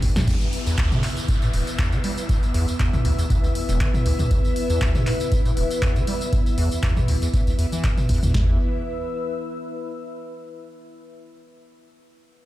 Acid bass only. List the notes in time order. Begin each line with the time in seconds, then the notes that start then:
0.03 D2
0.16 E2
0.28 E2
0.67 E2
0.78 D2
0.92 D3
1.03 G2
1.42 A2
1.54 E1
1.79 E2
1.92 D3
2.04 G3
2.54 E2
2.80 E2
2.93 E2
3.05 D2
3.18 E2
3.30 E2
3.44 D2
3.69 E1
3.80 D3
4.06 D2
4.19 E2
4.31 E2
4.70 E2
4.81 D2
4.95 D3
5.07 G2
5.45 A2
5.57 E1
5.82 E2
5.96 D3
6.07 G3
6.58 E2
6.83 E2
6.97 E2
7.08 D2
7.22 E2
7.34 E2
7.47 D2
7.59 E2
7.72 E3
7.84 D2
8.09 E2
8.23 E2
8.34 E2